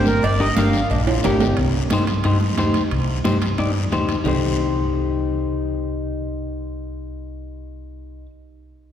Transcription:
Already playing: G1
0.06 A#4, high conga, short guiro
0.22 G1 D5, cowbell, high conga, long guiro
0.39 D4 G4 A#4 D#5
0.55 G1 D4 G4 A#4 F5, cowbell, high conga, short guiro
0.73 short guiro
0.90 A#1 D4, cowbell, high conga, long guiro
1.07 F4, high timbale
1.23 G1 D4 G4 A#4, cowbell, high conga, low conga, high timbale, short guiro
1.40 low timbale, short guiro
1.57 C2, high conga, high timbale, long guiro
1.90 G2 D#4 G4 C5, high conga, high timbale, short guiro
2.07 high timbale, short guiro
2.24 G2 D#4 G4 C5, high conga, high timbale, long guiro
2.41 high conga
2.58 D#2 D#4 G4 C5, high conga, high timbale, short guiro
2.74 high timbale, short guiro
2.91 C2, high conga, high timbale, long guiro
3.24 G2 D#4 G4 C5, high conga, high timbale, short guiro
3.42 high timbale, short guiro
3.58 G2 D#4 G4 D5, high conga, high timbale, long guiro
3.92 D#2 D#4 G4 C5, high conga, high timbale, short guiro
4.09 high timbale, short guiro
4.24 C2 D#4 G4, low conga, low timbale, long guiro
4.28 C5

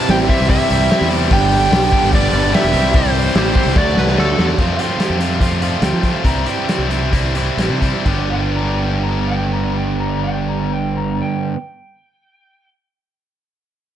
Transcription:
Already playing: C3 G3 C4 E4 G4 C5
0.07 A1 C3 E3 G3 C4 E4 G4 G5, snare, open hi-hat
0.27 C3 E3 G3 C4 E4 G4 E5, kick, open hi-hat
0.41 C2
0.48 C3 E3 G3 C4 E4 G4 E5, kick, open hi-hat
0.70 C2 C3 G3 C4 E4, open hi-hat
0.89 C3 E3 G3 C4 E4 G4, snare, open hi-hat
1.01 E2
1.10 C3 E3 G3 C4 E4 G4, open hi-hat
1.30 G1 G2 D3 G3 B3 D4 G4 B4 G5, kick, open hi-hat
1.51 open hi-hat
1.72 B1 G2 D3 G3 B3 D4 G4, snare, open hi-hat
1.92 G2 D3 G3 B3 D4 G4, kick, open hi-hat
2.03 G1
2.13 G2 D3 G3 B3 D4 G4 D5, kick, open hi-hat
2.32 G1 G2 D3 G3 B3 D4, open hi-hat
2.53 G2 D3 G3 B3 D4 G4 E5, snare, open hi-hat
2.64 E1
2.72 C2 C3 E3 G3 C4 E4 G4 C5, open hi-hat
2.94 C3 E3 G3 C4 E4 G4 C5, kick, open hi-hat
3.15 open hi-hat
3.34 A1 C3 E3 G3 C4 E4 G4 C5, snare, open hi-hat
3.55 C3 E3 G3 C4 E4 G4, kick, open hi-hat
3.66 C2
3.75 D2 D3 F#3 A3 D4 F#4 A4 D5, kick, snare
3.97 C2 B4, snare
4.07 snare
4.16 D2 D3 F#3 A3 D4 F#4 A4, snare
4.36 E2 D3 F#3 A3 D4 F#4, snare
4.49 snare
4.57 F2 C3 F3 A3 C4 F4 D5, kick, crash
4.77 F2 C3 F3 A3 C4 F4 G5, closed hi-hat
4.98 F2 C3 F3 A3 C4 F4, snare, closed hi-hat
5.10 F2
5.19 F2 C3 F3 A3 C4 F4, closed hi-hat
5.39 F2 C3 F3 A3 C4 F4 F5, kick, closed hi-hat
5.60 F2 C3 F3 A3 C4 F4 D5, closed hi-hat
5.81 D2 F2 C3 F3 A3 C4 F4 G5, snare, closed hi-hat
5.93 F3
6.03 F2 C3 F3 A3 C4 F4, kick, closed hi-hat
6.24 C2 C3 E3 G3 C4 E4 A#5, kick, closed hi-hat
6.45 C3 E3 G3 C4 E4 G5, closed hi-hat
6.66 C3 E3 G3 C4 E4, snare, closed hi-hat
6.78 C2
6.88 C3 E3 G3 C4 E4, closed hi-hat
7.11 C3 E3 G3 C4 E4, kick, closed hi-hat
7.33 C3 E3 G3 C4 E4, closed hi-hat
7.57 A1 C3 E3 G3 C4 E4, snare, closed hi-hat
7.69 C3
7.81 C3 E3 G3 C4 E4, kick, closed hi-hat
8.04 G1 G2 D3 G3 B3 D4 G4, kick, crash
8.30 G5
8.55 A#5
8.79 G5
9.03 A#5
9.27 G5
9.52 A#5
9.77 G5
10.00 A#5
10.24 G5
10.49 A#5
10.73 G5
10.97 A#5
11.21 G5

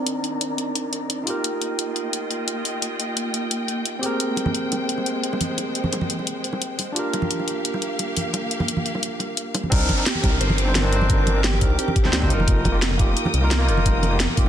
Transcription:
Already playing: D#3 C4 D4 D#4 A#4 D5 A#5
0.07 closed hi-hat
0.24 closed hi-hat
0.41 closed hi-hat
0.58 closed hi-hat
0.75 closed hi-hat
0.93 closed hi-hat
1.10 closed hi-hat
1.24 A#3 D#4 F4 D#5 G5, open hi-hat
1.28 G4 A#4
1.44 closed hi-hat
1.62 closed hi-hat
1.79 closed hi-hat
1.96 closed hi-hat
2.13 closed hi-hat
2.31 closed hi-hat
2.48 closed hi-hat
2.65 open hi-hat
2.82 closed hi-hat
3.00 closed hi-hat
3.17 closed hi-hat
3.34 closed hi-hat
3.51 closed hi-hat
3.68 closed hi-hat
3.85 closed hi-hat
3.99 G#3 C4 G4 C5, open hi-hat
4.04 G#4 A#4
4.20 closed hi-hat
4.36 closed hi-hat, high bongo
4.46 high conga
4.55 closed hi-hat
4.72 closed hi-hat, high bongo
4.89 closed hi-hat
4.98 high bongo
5.06 closed hi-hat
5.24 closed hi-hat
5.33 high bongo
5.41 open hi-hat, high conga
5.58 closed hi-hat, high bongo
5.75 closed hi-hat
5.84 high conga
5.93 closed hi-hat, high bongo
6.01 high conga
6.10 closed hi-hat
6.19 high bongo
6.27 closed hi-hat
6.44 closed hi-hat
6.53 high bongo
6.62 closed hi-hat
6.79 open hi-hat, high bongo
6.92 A#3 D4 F4 G4 F5, closed hi-hat
6.97 G4 A#4
7.13 closed hi-hat, high bongo
7.22 high conga
7.31 closed hi-hat
7.40 high bongo
7.48 closed hi-hat
7.65 closed hi-hat
7.74 high bongo
7.82 closed hi-hat
7.99 closed hi-hat, high bongo
8.17 open hi-hat, high conga
8.33 closed hi-hat, high bongo
8.51 closed hi-hat
8.60 high bongo, high conga
8.68 closed hi-hat
8.77 high conga
8.86 closed hi-hat
8.95 high bongo
9.03 closed hi-hat
9.19 closed hi-hat, high bongo
9.37 closed hi-hat
9.54 open hi-hat, high bongo
9.63 high conga
9.70 C2 C4 D4 D#4 A#4 D6, kick, closed hi-hat, crash, downlifter
9.89 kick, closed hi-hat, high bongo, high conga
9.96 C4 D4 D#4 A#4
10.06 G4, snare, closed hi-hat
10.15 high conga
10.22 C2 C4 D4 D#4 A#4, kick, closed hi-hat, high bongo
10.41 G1 C5, closed hi-hat
10.50 high bongo, high conga
10.58 closed hi-hat
10.65 C4 D4 D#4 C5
10.75 G1 A#4, snare, closed hi-hat, high conga
10.82 C4 D4 D#4 C5, high bongo
10.89 C4 D4, closed hi-hat
10.94 D#4 C5
11.02 high conga
11.09 A#4, kick, closed hi-hat, high bongo
11.27 closed hi-hat, high conga
11.34 C4 D4 D#4 A#4
11.44 G4, snare, closed hi-hat, high bongo
11.53 high conga
11.60 C2 C4 D4 D#4 A#4, kick, open hi-hat
11.70 high bongo
11.78 G4, closed hi-hat
11.88 high conga
11.96 kick, closed hi-hat
12.03 D2 C4 D4 D#4 C5, snare, high bongo
12.13 G4, snare, closed hi-hat, high conga
12.20 C4 D4 D#4 C5, kick
12.27 F1 A#3 D#4 F4 G5 D#6, closed hi-hat
12.31 F4 A#4, high bongo
12.40 high conga
12.48 kick, closed hi-hat
12.65 kick, closed hi-hat, high bongo, high conga
12.72 A#3 D#4 F4 G4
12.82 snare, closed hi-hat
12.91 high bongo, high conga
12.97 F1 A#3 D#4 F4 G4, kick, closed hi-hat
13.17 closed hi-hat
13.25 high bongo, high conga
13.34 C2, closed hi-hat
13.41 A#3 D#4 F4 A#4
13.51 snare, closed hi-hat, high bongo, high conga
13.58 A#3 D#4 F4 A#4
13.65 F1 A#3 D#4, closed hi-hat
13.69 F4 A#4
13.77 high conga
13.86 kick, closed hi-hat, high bongo
14.03 closed hi-hat, high conga
14.10 A#3 D#4 F4 G4, high bongo
14.20 snare, closed hi-hat
14.30 high conga
14.36 F1 A#3 D#4 F4 G4, kick, open hi-hat

